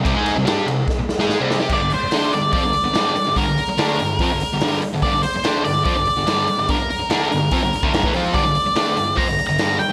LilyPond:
<<
  \new Staff \with { instrumentName = "Lead electric guitar" } { \time 4/4 \key g \minor \tempo 4 = 145 r1 | d''8 c''4 d''8 d''2 | bes'2.~ bes'8 r8 | d''8 c''4 d''8 d''2 |
bes'2.~ bes'8 r8 | d''2 bes''8. bes''8. g''8 | }
  \new Staff \with { instrumentName = "Distorted electric guitar" } { \clef bass \time 4/4 \key g \minor <c g>16 <aes ees' aes'>8 <c g>16 <g d' g'>8 <c g>8 r8. <aes ees' aes'>8 <c g c'>8 <c' g'>16 | <g, d>16 <g, d>16 r8 <d a d'>8 <g, d>8 <f c'>16 <g, d>16 r16 <g, d>16 <g, d g>8 r16 <g, d>16 | <g, d>16 <g, d>16 r8 <d a d'>8 <g, d>8 <f c'>16 <g, d>16 r16 <g, d>16 <g, d g>8 r16 <g, d>16 | <g, d>16 <g, d>16 r8 <d a d'>8 <g, d>8 <f c'>16 <g, d>16 r16 <g, d>16 <g, d g>8 r16 <g, d>16 |
<g, d>16 <g, d>16 r8 <d a d'>8 <g, d>8 <f c'>16 <g, d>16 r16 <d a>16 <g, d>16 <a, e>16 <f c' f'>8 | <g, d>16 <g, d>16 r8 <d a d'>8 <g, d>8 <f c'>16 <g, d>16 r16 <g, d>16 <g, d g>8 r16 g,16 | }
  \new DrumStaff \with { instrumentName = "Drums" } \drummode { \time 4/4 <cymc bd>8 <cymc sn>8 <cymc sn>8 cymc8 <bd sn>8 sn16 sn16 sn8 sn16 sn16 | <cymc bd>8 hho8 <hho sn>8 hho8 <hho bd>8 hho8 <hho sn>8 hho8 | <hho bd>8 hho8 <hho sn>8 hho8 <hho bd>8 hho8 <hho sn>8 hho8 | <hho bd>8 hho8 <hho sn>8 hho8 <hho bd>8 hho8 <hho sn>8 hho8 |
<hho bd>8 hho8 <hho sn>8 hho8 <hho bd>8 hho16 bd16 <hho sn>16 bd16 hho8 | <hho bd>8 hho8 <hho sn>8 hho8 <hho bd>8 hho8 <hho sn>8 hho8 | }
>>